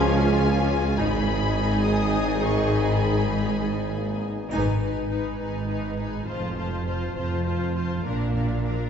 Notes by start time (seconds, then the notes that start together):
Already playing: C#2 C#3 F3 G#3 C#4 F4 G#4 C#5 F5 G#5
0.11 G#5
0.98 G#1 G#2 D#3 G#3 D#4 G#4 D#5 G#5 B5
1.86 D#6
2.45 C#6
2.72 B5
3.63 G#3
3.93 A#3
4.23 B3
4.50 G#1 G#2 D#4 B4 G#5, triangle
4.81 D#4 B4 G#5
5.09 D#4 B4 G#5
5.39 G#1 G#2 D#4 B4 G#5
5.69 D#4 B4 G#5
5.98 D#4 B4 G#5
6.27 F1 F2 F4 C5 A5
6.56 F4 C5 A5
6.85 F4 C5 A5
7.15 F1 F2 F4 C5 A5
7.46 F4 C5 A5
7.74 F4 C5 A5
8.03 A#1 A#2 D4 A#4 F5
8.34 D4 A#4 F5
8.64 D4 A#4 F5